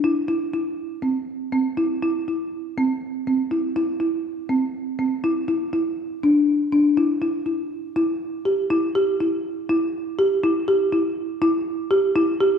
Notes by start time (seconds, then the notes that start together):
0.04 E4
0.28 E4
0.53 E4
1.02 C4
1.53 C4
1.77 E4
2.03 E4
2.28 E4
2.78 C4
3.27 C4
3.51 E4
3.76 E4
4.00 E4
4.49 C4
4.99 C4
5.24 E4
5.48 E4
5.73 E4
6.23 D4
6.72 D4
6.97 E4
7.22 E4
7.46 E4
7.96 E4
8.45 G4
8.70 E4
8.95 G4
9.20 E4
9.69 E4
10.19 G4
10.44 E4
10.68 G4
10.92 E4
11.42 E4
11.91 G4
12.16 E4
12.40 G4